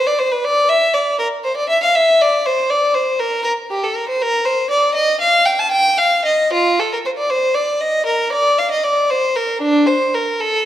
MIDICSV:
0, 0, Header, 1, 2, 480
1, 0, Start_track
1, 0, Tempo, 500835
1, 430, Time_signature, 12, 3, 24, 8
1, 5235, Tempo, 531915
1, 6675, Tempo, 515464
1, 10022, End_track
2, 0, Start_track
2, 0, Title_t, "Violin"
2, 0, Program_c, 0, 40
2, 66, Note_on_c, 0, 74, 87
2, 180, Note_on_c, 0, 72, 84
2, 189, Note_off_c, 0, 74, 0
2, 304, Note_on_c, 0, 71, 81
2, 306, Note_off_c, 0, 72, 0
2, 424, Note_on_c, 0, 74, 96
2, 426, Note_off_c, 0, 71, 0
2, 661, Note_on_c, 0, 76, 98
2, 662, Note_off_c, 0, 74, 0
2, 899, Note_off_c, 0, 76, 0
2, 900, Note_on_c, 0, 74, 80
2, 1138, Note_on_c, 0, 70, 86
2, 1140, Note_off_c, 0, 74, 0
2, 1215, Note_off_c, 0, 70, 0
2, 1377, Note_on_c, 0, 72, 80
2, 1500, Note_off_c, 0, 72, 0
2, 1503, Note_on_c, 0, 74, 82
2, 1622, Note_off_c, 0, 74, 0
2, 1622, Note_on_c, 0, 76, 93
2, 1741, Note_off_c, 0, 76, 0
2, 1756, Note_on_c, 0, 77, 89
2, 1867, Note_off_c, 0, 77, 0
2, 1869, Note_on_c, 0, 76, 99
2, 2105, Note_off_c, 0, 76, 0
2, 2118, Note_on_c, 0, 74, 88
2, 2352, Note_off_c, 0, 74, 0
2, 2354, Note_on_c, 0, 72, 87
2, 2590, Note_off_c, 0, 72, 0
2, 2591, Note_on_c, 0, 74, 91
2, 2821, Note_on_c, 0, 72, 86
2, 2824, Note_off_c, 0, 74, 0
2, 3057, Note_off_c, 0, 72, 0
2, 3063, Note_on_c, 0, 70, 95
2, 3281, Note_off_c, 0, 70, 0
2, 3292, Note_on_c, 0, 70, 92
2, 3369, Note_off_c, 0, 70, 0
2, 3549, Note_on_c, 0, 67, 80
2, 3669, Note_off_c, 0, 67, 0
2, 3675, Note_on_c, 0, 69, 72
2, 3794, Note_on_c, 0, 70, 78
2, 3795, Note_off_c, 0, 69, 0
2, 3915, Note_off_c, 0, 70, 0
2, 3918, Note_on_c, 0, 72, 82
2, 4034, Note_off_c, 0, 72, 0
2, 4039, Note_on_c, 0, 70, 97
2, 4264, Note_on_c, 0, 72, 88
2, 4275, Note_off_c, 0, 70, 0
2, 4507, Note_off_c, 0, 72, 0
2, 4510, Note_on_c, 0, 74, 87
2, 4739, Note_on_c, 0, 75, 91
2, 4748, Note_off_c, 0, 74, 0
2, 4983, Note_off_c, 0, 75, 0
2, 4989, Note_on_c, 0, 77, 104
2, 5228, Note_off_c, 0, 77, 0
2, 5229, Note_on_c, 0, 79, 85
2, 5348, Note_off_c, 0, 79, 0
2, 5350, Note_on_c, 0, 81, 90
2, 5464, Note_on_c, 0, 79, 101
2, 5467, Note_off_c, 0, 81, 0
2, 5696, Note_off_c, 0, 79, 0
2, 5700, Note_on_c, 0, 77, 98
2, 5944, Note_on_c, 0, 75, 94
2, 5946, Note_off_c, 0, 77, 0
2, 6193, Note_off_c, 0, 75, 0
2, 6202, Note_on_c, 0, 65, 94
2, 6439, Note_on_c, 0, 69, 84
2, 6441, Note_off_c, 0, 65, 0
2, 6559, Note_off_c, 0, 69, 0
2, 6559, Note_on_c, 0, 70, 72
2, 6606, Note_off_c, 0, 70, 0
2, 6671, Note_on_c, 0, 72, 75
2, 6719, Note_off_c, 0, 72, 0
2, 6788, Note_on_c, 0, 74, 83
2, 6898, Note_on_c, 0, 72, 93
2, 6907, Note_off_c, 0, 74, 0
2, 7130, Note_on_c, 0, 74, 83
2, 7142, Note_off_c, 0, 72, 0
2, 7372, Note_on_c, 0, 75, 91
2, 7378, Note_off_c, 0, 74, 0
2, 7611, Note_on_c, 0, 70, 88
2, 7617, Note_off_c, 0, 75, 0
2, 7851, Note_off_c, 0, 70, 0
2, 7857, Note_on_c, 0, 74, 94
2, 8095, Note_off_c, 0, 74, 0
2, 8097, Note_on_c, 0, 77, 84
2, 8214, Note_on_c, 0, 75, 84
2, 8221, Note_off_c, 0, 77, 0
2, 8331, Note_on_c, 0, 74, 85
2, 8338, Note_off_c, 0, 75, 0
2, 8576, Note_on_c, 0, 72, 91
2, 8580, Note_off_c, 0, 74, 0
2, 8816, Note_on_c, 0, 70, 83
2, 8823, Note_off_c, 0, 72, 0
2, 9058, Note_on_c, 0, 62, 97
2, 9063, Note_off_c, 0, 70, 0
2, 9293, Note_on_c, 0, 72, 86
2, 9298, Note_off_c, 0, 62, 0
2, 9541, Note_off_c, 0, 72, 0
2, 9547, Note_on_c, 0, 70, 77
2, 9789, Note_on_c, 0, 69, 92
2, 9791, Note_off_c, 0, 70, 0
2, 10022, Note_off_c, 0, 69, 0
2, 10022, End_track
0, 0, End_of_file